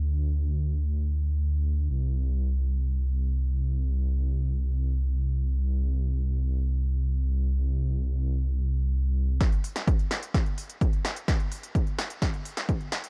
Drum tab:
HH |----------------|----------------|----------------|----------------|
SD |----------------|----------------|----------------|----------------|
BD |----------------|----------------|----------------|----------------|

HH |----------------|xxoxxxoxxxoxxxox|xxoxxxoxxxoxxxox|
SD |----------------|o--o--o-o-----o-|o-----o-o--o--o-|
BD |----------------|o---o---o---o---|o---o---o---o---|